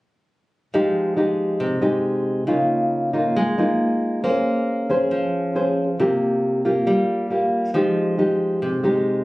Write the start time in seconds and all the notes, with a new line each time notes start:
0.74 F3 G#3 D#4 G4
1.17 G#3 D#4 G4
1.60 C3
1.82 G#3 D#4 G4
2.47 C#3 A#3 D#4 F4
3.13 A#3 D#4 F4
3.36 G#3
3.58 A#3 D#4 F4
4.24 A#3 C#4 G#4 C5
4.90 C#4 G#4 C5
5.11 F3
5.55 C#4 G#4 C5
6.00 C3 A#3 F4 G4
6.65 A#3 F4 G4
6.87 G3
7.30 A#3 F4 G4
7.74 F3 G#3 D#4 G4
8.18 G#3 D#4 G4
8.62 C3
8.84 G#3 D#4 G4